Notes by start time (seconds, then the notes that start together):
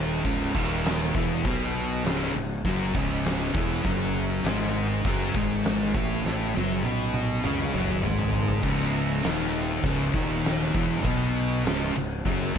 Already playing: D#1 D#2 D#3
0.24 C#1 C#2 C#3, kick, crash
0.55 D#1 D#2 D#3, kick
0.85 snare, crash
1.15 E1 E2 E3, kick
1.45 B1 B2 B3, kick, crash
2.05 C#1 C#2 C#3, snare, crash
2.35 C#1 C#2
2.65 F#1 F#2 F#3, kick, crash
2.95 C#1 C#2 C#3, kick
3.25 snare, crash
3.54 E1 E2 E3, kick
3.85 F#1 F#2 F#3, kick, crash
4.44 G#1 G#2 G#3, snare, crash
5.05 F#1 F#2 F#3, kick, crash
5.35 G#1 G#2 G#3, kick
5.64 snare, crash
5.95 A1 A2 A3, kick
6.25 A1 A2 A3, snare
6.55 F#1 F#2 F#3, snare
6.85 B1 B2 B3, high tom
7.14 high tom
7.44 C#2 C#3 C#4, mid tom
7.59 mid tom
7.74 F#1 F#2 F#3, mid tom
7.88 mid tom
8.03 G#1 G#2 G#3, mid tom
8.19 floor tom
8.33 floor tom
8.48 floor tom
8.63 C#1 C#2 C#3, kick, crash
9.23 D#1 D#2 D#3, snare, crash
9.83 C#1 C#2 C#3, kick, crash
10.14 D#1 D#2 D#3, kick
10.44 snare, crash
10.74 E1 E2 E3, kick
11.04 B1 B2 B3, kick, crash
11.65 C#1 C#2 C#3, snare, crash
11.95 C#1 C#2
12.25 F#1 F#2 F#3, kick, crash
12.55 C#2